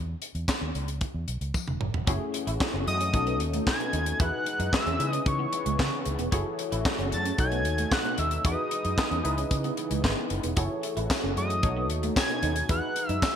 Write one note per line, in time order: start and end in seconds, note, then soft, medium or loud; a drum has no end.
0.00 0.14 E2 loud
0.22 closed hi-hat medium
0.35 0.44 E2 medium
0.35 closed hi-hat soft
0.48 kick loud
0.48 snare loud
0.48 clap medium
0.48 tambourine medium
0.61 0.71 D#2 medium
0.75 1.03 C#2 medium
0.75 closed hi-hat medium
0.88 closed hi-hat medium
1.01 kick loud
1.01 closed hi-hat medium
1.14 1.24 E2 medium
1.28 1.37 B1 medium
1.28 closed hi-hat medium
1.41 1.50 C#2 medium
1.41 closed hi-hat soft
1.54 kick medium
1.54 high tom soft
1.54 tambourine medium
1.68 1.77 E1 medium
1.68 mid tom medium
1.81 1.90 F#1 medium
1.81 mid tom medium
1.94 2.03 E1 medium
1.94 floor tom medium
2.07 2.17 F#1 loud
2.07 3.13 E3 medium
2.07 3.11 A3 medium
2.07 4.18 A3 medium
2.07 3.12 C#4 medium
2.07 3.12 E4 medium
2.07 3.13 F#4 medium
2.07 2.15 F#4 medium
2.07 3.12 G#4 medium
2.07 kick loud
2.07 closed hi-hat loud
2.34 muted clean electric guitar stroke soft
2.34 closed hi-hat medium
2.47 2.56 A1 medium
2.47 2.55 E4 medium
2.47 closed hi-hat medium
2.60 kick loud
2.60 snare loud
2.60 clap medium
2.74 2.83 F#1 loud
2.74 2.82 C#4 medium
2.87 3.15 F#2 loud
2.87 3.37 D#6 loud
2.87 muted clean electric guitar stroke soft
2.87 closed hi-hat medium
3.00 3.08 C#4 medium
3.00 closed hi-hat medium
3.13 3.40 B1 loud
3.13 4.19 B2 medium
3.13 4.17 C#4 medium
3.13 4.18 D#4 medium
3.13 4.19 D#4 medium
3.13 4.18 F#4 medium
3.13 4.18 A4 medium
3.13 kick loud
3.13 closed hi-hat medium
3.27 3.35 B3 medium
3.27 closed hi-hat soft
3.40 3.59 D#2 medium
3.40 muted clean electric guitar stroke medium
3.40 closed hi-hat medium
3.53 3.61 A3 medium
3.53 closed hi-hat medium
3.67 4.22 G#6 loud
3.67 muted clean electric guitar stroke soft
3.67 kick loud
3.67 snare medium
3.67 clap medium
3.80 3.88 B3 medium
3.80 closed hi-hat soft
3.93 4.12 D#2 loud
3.93 4.01 D#4 medium
3.93 closed hi-hat medium
4.06 closed hi-hat medium
4.20 4.29 E2 loud
4.20 4.98 E3 medium
4.20 4.99 G#3 medium
4.20 4.98 D#4 medium
4.20 4.99 D#4 medium
4.20 4.28 E4 medium
4.20 5.00 F#4 medium
4.20 4.99 G#4 medium
4.20 4.99 B4 medium
4.20 4.73 F#6 loud
4.20 kick loud
4.20 closed hi-hat loud
4.46 muted clean electric guitar stroke soft
4.46 closed hi-hat medium
4.60 4.69 F#2 loud
4.60 4.68 D#4 medium
4.60 closed hi-hat medium
4.73 5.10 E6 loud
4.73 kick loud
4.73 snare loud
4.73 clap loud
4.86 4.96 E2 loud
4.86 4.94 C#4 medium
4.86 closed hi-hat soft
4.99 6.31 C#3 medium
4.99 5.18 C#3 medium
4.99 6.31 E3 medium
4.99 6.31 B3 medium
4.99 6.29 D#4 medium
4.99 6.30 E4 medium
4.99 6.30 G#4 medium
4.99 6.30 B4 medium
4.99 muted clean electric guitar stroke soft
4.99 closed hi-hat medium
5.10 5.21 C#4 medium
5.10 5.29 D#6 loud
5.10 closed hi-hat medium
5.26 5.45 C#3 loud
5.26 6.06 C#6 medium
5.26 kick loud
5.26 closed hi-hat medium
5.39 5.47 B3 medium
5.53 muted clean electric guitar stroke medium
5.53 closed hi-hat medium
5.66 5.75 C#2 medium
5.66 5.74 G#3 medium
5.66 closed hi-hat medium
5.79 5.88 C#3 loud
5.79 5.87 B3 medium
5.79 kick loud
5.79 snare loud
5.79 clap medium
6.05 6.15 C#2 medium
6.05 muted clean electric guitar stroke soft
6.05 closed hi-hat medium
6.19 6.29 E1 medium
6.19 6.27 B3 medium
6.19 closed hi-hat medium
6.32 6.42 F#1 loud
6.32 7.37 E3 medium
6.32 8.43 A3 medium
6.32 7.36 E4 medium
6.32 6.40 F#4 medium
6.32 7.37 F#4 medium
6.32 7.36 G#4 medium
6.32 7.37 A4 medium
6.32 7.37 C#5 medium
6.32 kick loud
6.32 closed hi-hat loud
6.59 muted clean electric guitar stroke soft
6.59 closed hi-hat medium
6.72 6.81 A1 loud
6.72 6.80 E4 medium
6.72 closed hi-hat medium
6.85 kick loud
6.85 snare loud
6.85 clap loud
6.99 7.14 F#1 loud
6.99 7.07 C#4 medium
6.99 closed hi-hat soft
7.12 7.31 F#2 loud
7.12 7.37 A6 loud
7.12 muted clean electric guitar stroke soft
7.12 closed hi-hat medium
7.25 7.33 C#4 medium
7.25 closed hi-hat medium
7.38 7.65 B1 loud
7.38 8.44 B2 medium
7.38 8.42 D#4 medium
7.38 8.44 D#4 medium
7.38 8.43 F#4 medium
7.38 8.43 A4 medium
7.38 8.43 C#5 medium
7.38 7.94 G#6 loud
7.38 kick loud
7.38 closed hi-hat medium
7.52 7.60 B3 medium
7.52 closed hi-hat soft
7.65 7.84 D#2 medium
7.65 muted clean electric guitar stroke medium
7.65 closed hi-hat medium
7.78 7.86 A3 medium
7.78 closed hi-hat medium
7.92 8.21 F#6 medium
7.92 muted clean electric guitar stroke soft
7.92 kick loud
7.92 snare loud
7.92 clap medium
8.04 8.13 B3 medium
8.04 closed hi-hat soft
8.18 8.37 D#2 medium
8.18 8.26 D#4 medium
8.18 8.45 E6 loud
8.18 closed hi-hat medium
8.31 closed hi-hat medium
8.44 8.54 E2 loud
8.44 9.23 E3 medium
8.44 9.24 G#3 medium
8.44 9.22 D#4 medium
8.44 9.24 D#4 medium
8.44 8.53 E4 medium
8.44 9.24 F#4 medium
8.44 9.23 G#4 medium
8.44 8.51 A4 medium
8.44 10.01 D#6 medium
8.44 kick loud
8.44 closed hi-hat loud
8.52 9.24 B4 medium
8.71 muted clean electric guitar stroke soft
8.71 closed hi-hat medium
8.85 8.94 F#2 medium
8.85 8.92 D#4 medium
8.85 closed hi-hat soft
8.98 kick loud
8.98 snare loud
8.98 clap loud
9.11 9.20 E2 loud
9.11 9.19 C#4 medium
9.11 closed hi-hat soft
9.24 9.43 C#2 loud
9.24 10.56 C#3 medium
9.24 10.56 E3 medium
9.24 10.56 B3 medium
9.24 10.54 D#4 medium
9.24 10.54 E4 medium
9.24 10.55 G#4 medium
9.24 10.55 B4 medium
9.24 muted clean electric guitar stroke soft
9.24 closed hi-hat medium
9.38 9.46 C#4 medium
9.38 closed hi-hat medium
9.51 9.70 C#3 loud
9.51 kick medium
9.51 closed hi-hat medium
9.64 9.72 B3 medium
9.64 closed hi-hat soft
9.77 muted clean electric guitar stroke soft
9.77 closed hi-hat medium
9.91 10.00 C#2 medium
9.91 9.99 G#3 medium
9.91 closed hi-hat medium
10.04 10.13 G#1 medium
10.04 10.12 B3 medium
10.04 kick loud
10.04 snare medium
10.04 clap medium
10.30 10.40 F#1 loud
10.30 muted clean electric guitar stroke soft
10.30 closed hi-hat medium
10.43 10.53 E1 medium
10.43 10.52 B3 medium
10.43 closed hi-hat medium
10.56 10.66 F#1 loud
10.56 11.62 E3 medium
10.56 12.67 A3 medium
10.56 11.61 E4 medium
10.56 11.62 F#4 medium
10.56 10.65 F#4 medium
10.56 11.61 G#4 medium
10.56 11.61 A4 medium
10.56 11.62 C#5 medium
10.56 kick loud
10.56 closed hi-hat loud
10.83 muted clean electric guitar stroke soft
10.83 closed hi-hat medium
10.97 11.06 A1 medium
10.97 11.05 E4 medium
10.97 closed hi-hat soft
11.10 kick loud
11.10 snare loud
11.10 clap medium
11.10 tambourine medium
11.23 11.33 F#1 medium
11.23 11.31 C#4 medium
11.37 11.65 F#2 loud
11.37 11.87 D#6 loud
11.37 muted clean electric guitar stroke soft
11.37 closed hi-hat medium
11.50 11.58 C#4 medium
11.50 closed hi-hat medium
11.63 11.90 B1 loud
11.63 12.68 B2 medium
11.63 12.67 D#4 medium
11.63 12.69 D#4 medium
11.63 12.67 F#4 medium
11.63 12.68 A4 medium
11.63 12.68 C#5 medium
11.63 kick loud
11.63 closed hi-hat medium
11.77 11.84 B3 medium
11.90 12.08 D#2 medium
11.90 muted clean electric guitar stroke medium
11.90 closed hi-hat medium
12.03 12.11 A3 medium
12.03 closed hi-hat medium
12.16 12.66 G#6 loud
12.16 kick loud
12.16 snare loud
12.16 clap medium
12.16 tambourine loud
12.29 12.38 B3 medium
12.29 closed hi-hat soft
12.43 12.61 D#2 loud
12.43 12.51 D#4 medium
12.43 closed hi-hat medium
12.56 closed hi-hat medium
12.69 12.79 E2 loud
12.69 13.36 E3 loud
12.69 13.36 G#3 medium
12.69 13.36 D#4 medium
12.69 12.77 E4 medium
12.69 13.36 F#4 medium
12.69 13.36 G#4 medium
12.69 13.36 B4 medium
12.69 13.10 F#6 loud
12.69 kick loud
12.69 closed hi-hat loud
12.96 muted clean electric guitar stroke soft
12.96 closed hi-hat medium
13.09 13.19 F#2 medium
13.09 13.17 D#4 medium
13.09 13.24 E6 loud
13.09 closed hi-hat soft
13.22 13.36 E6 loud
13.22 kick loud
13.22 snare loud
13.22 clap loud
13.22 tambourine medium